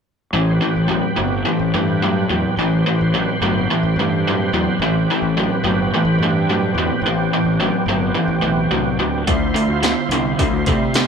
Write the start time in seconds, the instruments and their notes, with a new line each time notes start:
0.33 fingered electric bass A1, overdriven electric guitar A2 E3, tonewheel organ C#4 G#4 C5
0.51 tonewheel organ C4 G4 B4
0.61 overdriven electric guitar A2 E3
0.76 fingered electric bass A1
0.88 overdriven electric guitar A2 F#3
1.16 fingered electric bass G1, overdriven electric guitar A2 F#3
1.45 overdriven electric guitar A2 E3
1.59 fingered electric bass A1
1.74 fingered electric bass G2, overdriven electric guitar A2 E3
2.02 overdriven electric guitar A2 F#3
2.29 fingered electric bass E2, overdriven electric guitar A2 F#3
2.56 fingered electric bass A1, overdriven electric guitar A2 E3, tonewheel organ G4 B4 C5
2.86 overdriven electric guitar A2 E3
3.01 fingered electric bass A1
3.14 overdriven electric guitar A2 F#3
3.41 fingered electric bass G1, overdriven electric guitar A2 F#3
3.70 overdriven electric guitar A2 E3
3.83 fingered electric bass A1
3.96 fingered electric bass G2, overdriven electric guitar A2 E3
4.28 overdriven electric guitar A2 F#3
4.53 fingered electric bass E2, overdriven electric guitar A2 F#3
4.79 fingered electric bass A1, overdriven electric guitar A2 E3, tonewheel organ C4 G4 B4
5.10 overdriven electric guitar A2 E3
5.22 fingered electric bass A1
5.37 overdriven electric guitar A2 F#3
5.64 fingered electric bass G1, overdriven electric guitar A2 F#3
5.94 overdriven electric guitar A2 E3
6.05 fingered electric bass A1
6.19 fingered electric bass G2, overdriven electric guitar A2
6.23 overdriven electric guitar E3
6.49 overdriven electric guitar A2 F#3
6.75 fingered electric bass E2, overdriven electric guitar A2 F#3
7.01 fingered electric bass A1, tonewheel organ B3 C4 G4
7.06 overdriven electric guitar A2 E3
7.33 overdriven electric guitar A2 E3
7.45 fingered electric bass A1
7.60 overdriven electric guitar A2 F#3
7.86 fingered electric bass G1, overdriven electric guitar A2 F#3
8.15 overdriven electric guitar A2 E3
8.28 fingered electric bass A1
8.42 fingered electric bass B1, overdriven electric guitar A2 E3
8.71 fingered electric bass C2, overdriven electric guitar A2 F#3
8.99 fingered electric bass D2, overdriven electric guitar A2 F#3
9.27 fingered electric bass D2, overdriven electric guitar D3 A3, tonewheel organ E4 F4 C5, kick, open hi-hat
9.55 overdriven electric guitar D3 A3, open hi-hat
9.68 fingered electric bass D2
9.83 overdriven electric guitar D3 B3, snare, open hi-hat
10.09 fingered electric bass C2, overdriven electric guitar D3 B3, open hi-hat
10.39 overdriven electric guitar D3 A3, kick, open hi-hat
10.51 fingered electric bass D2
10.66 fingered electric bass C3, overdriven electric guitar D3 A3, kick, open hi-hat
10.94 overdriven electric guitar D3 B3, snare, open hi-hat